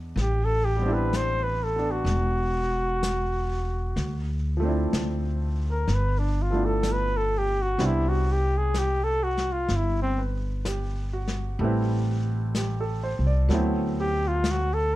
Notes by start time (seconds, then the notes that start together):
Already playing: E2 G#3 B3 D4 E4 F#4
0.16 A1, brush sweep, snare
0.21 G4
0.45 A4
0.65 G4
0.77 G3 B3
0.82 C4 D4
0.88 E4
0.93 B4
1.13 C5, brush sweep, snare, hi-hat pedal
1.44 B4
1.64 A4
1.76 B3 D4
1.91 F#4
2.05 E1, brush sweep, snare
3.03 brush sweep, snare, hi-hat pedal
3.96 D2, brush sweep, snare
4.57 F3 A3
4.63 C4 D4
4.69 E4
4.93 D2, brush sweep, snare, hi-hat pedal
5.71 A#4
5.88 G1, brush sweep, snare
5.94 B4
6.19 D4
6.42 F4
6.50 F3 A3 B3 D4
6.56 E4
6.65 A4
6.83 brush sweep, snare, hi-hat pedal
6.92 B4
7.17 A4
7.38 G4
7.62 F#4
7.78 C2 G3 B3 C4 D4 E4, brush sweep, snare
7.86 E4
8.09 F#4
8.32 G4
8.58 G#4
8.74 brush sweep, snare, hi-hat pedal
8.79 G4
9.04 A4
9.24 F#4
9.37 snare
9.52 F4
9.68 G1, brush sweep, snare
9.76 E4
10.02 C4
10.18 B4
10.65 G4, brush sweep, snare, hi-hat pedal
11.13 F#4
11.28 snare
11.59 A1 G3 A3, brush sweep
11.63 C4 E4 B4
12.55 G4, brush sweep, snare, hi-hat pedal
12.81 A4
13.03 C5
13.19 C2
13.27 D5
13.49 D2 F#3 A3 B3 C4, brush sweep, snare
13.54 E4
14.01 G4
14.28 F4
14.44 brush sweep, snare, hi-hat pedal
14.51 F#4
14.74 A4